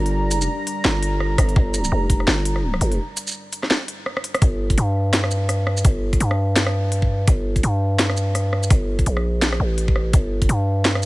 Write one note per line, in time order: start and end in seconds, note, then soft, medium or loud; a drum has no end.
0.00 0.33 G1 medium
0.00 4.38 G3 medium
0.00 4.38 D4 medium
0.00 4.38 D5 medium
0.00 4.40 A#5 medium
0.06 closed hi-hat soft
0.31 0.48 F#1 medium
0.31 closed hi-hat medium
0.31 shaker medium
0.42 shaker medium
0.67 closed hi-hat medium
0.85 1.37 G1 loud
0.85 snare loud
1.03 closed hi-hat medium
1.20 cross-stick medium
1.38 1.55 G1 loud
1.38 kick medium
1.38 cross-stick medium
1.38 closed hi-hat medium
1.49 closed hi-hat soft
1.56 1.91 G1 loud
1.56 kick loud
1.74 closed hi-hat medium
1.74 shaker medium
1.84 shaker medium
1.92 2.26 F1 loud
2.10 kick medium
2.10 closed hi-hat medium
2.20 cross-stick soft
2.27 2.80 G1 loud
2.27 snare loud
2.45 closed hi-hat medium
2.56 cross-stick soft
2.74 cross-stick medium
2.81 2.99 G1 medium
2.81 closed hi-hat medium
2.92 closed hi-hat soft
3.17 closed hi-hat medium
3.17 shaker medium
3.27 shaker medium
3.29 shaker medium
3.31 shaker soft
3.33 shaker soft
3.53 closed hi-hat medium
3.53 shaker soft
3.63 cross-stick soft
3.63 snare soft
3.71 snare loud
3.88 closed hi-hat medium
4.06 cross-stick medium
4.17 cross-stick medium
4.24 closed hi-hat medium
4.34 cross-stick medium
4.34 closed hi-hat soft
4.42 4.76 G1 medium
4.42 kick loud
4.42 closed hi-hat medium
4.70 kick medium
4.70 closed hi-hat soft
4.78 5.84 G2 loud
4.78 closed hi-hat medium
5.13 snare loud
5.13 closed hi-hat medium
5.24 cross-stick medium
5.31 shaker medium
5.49 cross-stick medium
5.49 closed hi-hat medium
5.67 cross-stick medium
5.77 shaker medium
5.85 6.19 G1 loud
5.85 kick loud
5.85 closed hi-hat medium
6.13 kick medium
6.13 closed hi-hat soft
6.20 7.26 G2 loud
6.20 closed hi-hat medium
6.31 cross-stick medium
6.56 snare loud
6.56 closed hi-hat medium
6.67 cross-stick medium
6.92 closed hi-hat medium
7.02 kick medium
7.28 7.62 G1 loud
7.28 kick loud
7.28 closed hi-hat medium
7.56 kick medium
7.56 closed hi-hat soft
7.63 8.69 G2 loud
7.63 closed hi-hat medium
7.99 snare loud
7.99 closed hi-hat medium
8.10 cross-stick medium
8.17 shaker medium
8.35 cross-stick medium
8.35 closed hi-hat medium
8.53 cross-stick medium
8.63 shaker medium
8.70 9.05 G1 loud
8.70 kick loud
8.70 closed hi-hat medium
8.99 kick medium
8.99 closed hi-hat soft
9.06 9.59 A#1 loud
9.06 closed hi-hat medium
9.17 cross-stick medium
9.42 snare loud
9.42 closed hi-hat medium
9.52 cross-stick medium
9.60 10.12 A1 loud
9.78 closed hi-hat medium
9.88 kick medium
9.96 cross-stick medium
10.13 10.48 G1 medium
10.13 kick loud
10.13 closed hi-hat medium
10.42 kick medium
10.42 closed hi-hat soft
10.49 11.05 G2 loud
10.49 closed hi-hat medium
10.85 snare loud
10.85 closed hi-hat medium
10.95 cross-stick medium